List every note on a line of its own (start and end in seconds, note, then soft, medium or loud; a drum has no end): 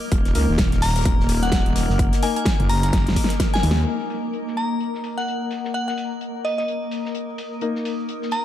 0.00 8.45 A#3 medium
0.00 8.45 A#4 medium
0.00 8.45 D#5 medium
0.00 4.99 F6 loud
0.12 0.34 D#1 medium
0.12 kick loud
0.12 closed hi-hat medium
0.25 snare soft
0.25 closed hi-hat soft
0.35 0.47 C#2 loud
0.35 0.50 A#3 medium
0.35 0.50 D#4 medium
0.35 0.50 A#4 medium
0.35 closed hi-hat medium
0.35 open hi-hat loud
0.49 0.57 D#1 loud
0.58 1.04 D#1 medium
0.58 kick loud
0.58 snare loud
0.58 closed hi-hat medium
0.72 snare soft
0.72 closed hi-hat soft
0.82 0.99 A#5 medium
0.82 snare medium
0.82 closed hi-hat medium
0.82 open hi-hat medium
0.88 snare medium
0.88 closed hi-hat medium
0.96 snare medium
0.96 closed hi-hat medium
1.01 snare medium
1.01 closed hi-hat medium
1.05 1.17 D#1 medium
1.05 kick loud
1.05 closed hi-hat medium
1.19 1.64 D#1 loud
1.19 snare soft
1.29 closed hi-hat medium
1.29 open hi-hat loud
1.43 1.90 F#5 medium
1.43 snare soft
1.43 closed hi-hat medium
1.52 kick loud
1.52 snare loud
1.52 closed hi-hat medium
1.66 1.87 D#1 medium
1.66 closed hi-hat soft
1.76 snare loud
1.76 closed hi-hat medium
1.76 open hi-hat medium
1.89 2.11 F#1 loud
1.89 snare soft
1.99 kick loud
1.99 closed hi-hat medium
2.13 snare medium
2.13 closed hi-hat medium
2.13 closed hi-hat soft
2.22 2.44 A#3 medium
2.22 2.44 D#4 medium
2.22 2.44 A#4 medium
2.22 2.32 G#5 medium
2.22 snare soft
2.22 open hi-hat loud
2.36 2.43 G#5 medium
2.36 closed hi-hat soft
2.36 closed hi-hat medium
2.46 kick loud
2.46 snare loud
2.46 closed hi-hat medium
2.60 2.91 F#1 medium
2.60 closed hi-hat soft
2.69 2.78 A#5 medium
2.69 closed hi-hat medium
2.69 open hi-hat medium
2.83 2.90 A#5 medium
2.83 snare soft
2.83 closed hi-hat medium
2.93 3.15 F#1 medium
2.93 kick loud
2.93 snare medium
2.93 closed hi-hat medium
3.07 snare medium
3.07 closed hi-hat soft
3.16 kick medium
3.16 closed hi-hat medium
3.16 open hi-hat medium
3.24 snare medium
3.30 snare soft
3.30 closed hi-hat medium
3.40 kick loud
3.40 snare medium
3.40 snare loud
3.40 closed hi-hat medium
3.54 3.87 G#5 medium
3.54 snare medium
3.54 closed hi-hat soft
3.63 3.85 D#2 loud
3.63 open hi-hat medium
3.71 snare loud
3.87 7.59 A#3 medium
3.87 7.59 D#4 medium
3.87 7.59 A#4 medium
3.87 closed hi-hat medium
3.99 snare soft
4.10 closed hi-hat medium
4.10 open hi-hat medium
4.10 cabasa medium
4.25 cabasa soft
4.33 closed hi-hat medium
4.33 cabasa soft
4.45 8.45 D#6 medium
4.45 snare soft
4.45 cabasa soft
4.57 4.74 A#5 medium
4.57 closed hi-hat medium
4.57 open hi-hat medium
4.57 cabasa medium
4.72 cabasa soft
4.80 closed hi-hat medium
4.80 cabasa soft
4.94 snare soft
4.94 cabasa soft
5.04 closed hi-hat medium
5.04 open hi-hat medium
5.04 cabasa medium
5.18 5.64 F#5 medium
5.18 snare soft
5.28 closed hi-hat medium
5.28 cabasa soft
5.42 cabasa soft
5.51 snare soft
5.51 closed hi-hat medium
5.51 open hi-hat medium
5.51 cabasa medium
5.64 snare soft
5.64 cabasa soft
5.74 5.83 F#5 medium
5.74 closed hi-hat medium
5.74 cabasa soft
5.88 5.94 F#5 medium
5.88 snare soft
5.98 closed hi-hat medium
5.98 open hi-hat loud
5.98 cabasa medium
6.12 cabasa soft
6.21 closed hi-hat medium
6.21 cabasa soft
6.36 cabasa soft
6.45 6.53 D#5 medium
6.45 closed hi-hat medium
6.45 open hi-hat medium
6.45 cabasa medium
6.58 6.64 D#5 medium
6.58 snare soft
6.58 cabasa soft
6.68 closed hi-hat medium
6.68 cabasa soft
6.83 cabasa soft
6.91 closed hi-hat medium
6.91 open hi-hat medium
6.91 cabasa medium
7.05 snare soft
7.05 cabasa soft
7.15 closed hi-hat medium
7.15 cabasa soft
7.29 cabasa soft
7.38 closed hi-hat medium
7.38 open hi-hat medium
7.38 cabasa medium
7.53 cabasa soft
7.61 8.45 A#3 medium
7.61 8.45 D#4 medium
7.61 8.45 A#4 medium
7.61 closed hi-hat medium
7.61 cabasa soft
7.75 snare soft
7.75 cabasa soft
7.85 closed hi-hat medium
7.85 open hi-hat loud
7.85 cabasa medium
8.00 cabasa soft
8.09 closed hi-hat medium
8.09 cabasa soft
8.22 snare soft
8.22 cabasa soft
8.31 8.45 A#5 medium
8.31 closed hi-hat medium
8.31 open hi-hat medium
8.31 cabasa medium